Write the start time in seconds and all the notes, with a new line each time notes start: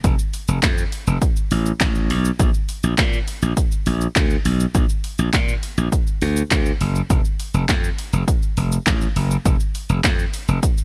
0.04 F1, kick, closed hi-hat, shaker
0.19 shaker
0.34 open hi-hat, shaker
0.48 F1, shaker
0.63 F2, kick, snare, clap, closed hi-hat, shaker
0.78 shaker
0.92 open hi-hat, shaker
1.07 F1, shaker
1.22 kick, closed hi-hat, shaker
1.36 shaker
1.51 A1, open hi-hat, shaker
1.66 shaker
1.80 A1, kick, snare, clap, closed hi-hat, shaker
1.95 shaker
2.10 B1, open hi-hat, shaker
2.25 shaker
2.39 A#1, kick, closed hi-hat, shaker
2.54 shaker
2.69 open hi-hat, shaker
2.83 A#1, shaker
2.98 A#2, kick, snare, clap, closed hi-hat, shaker
3.13 shaker
3.28 open hi-hat, shaker
3.42 A#1, shaker
3.57 kick, closed hi-hat, shaker
3.72 shaker
3.86 A#1, open hi-hat, shaker
4.01 shaker
4.16 D2, kick, snare, clap, closed hi-hat, shaker
4.30 shaker
4.45 B1, open hi-hat, shaker
4.60 shaker
4.75 A#1, kick, closed hi-hat, shaker
4.89 shaker
5.04 open hi-hat, shaker
5.19 A#1, shaker
5.33 A#2, kick, snare, clap, closed hi-hat, shaker
5.48 shaker
5.63 open hi-hat, shaker
5.78 A#1, shaker
5.92 kick, closed hi-hat, shaker
6.07 shaker
6.22 D2, open hi-hat, shaker
6.36 shaker
6.51 D2, kick, snare, clap, closed hi-hat, shaker
6.66 shaker
6.81 F#1, open hi-hat, shaker
6.95 shaker
7.10 F1, kick, closed hi-hat, shaker
7.25 shaker
7.40 open hi-hat, shaker
7.54 F1, shaker
7.69 F2, kick, snare, clap, closed hi-hat, shaker
7.84 shaker
7.98 open hi-hat, shaker
8.13 F1, shaker
8.28 kick, closed hi-hat, shaker
8.42 shaker
8.57 F1, open hi-hat, shaker
8.72 shaker
8.87 A1, kick, snare, clap, closed hi-hat, shaker
9.01 shaker
9.16 F#1, open hi-hat, shaker
9.31 shaker
9.46 F1, kick, closed hi-hat, shaker
9.60 shaker
9.75 open hi-hat, shaker
9.89 F1, shaker
10.04 F2, kick, snare, clap, closed hi-hat, shaker
10.19 shaker
10.34 open hi-hat, shaker
10.48 F1, shaker
10.63 kick, closed hi-hat, shaker
10.78 shaker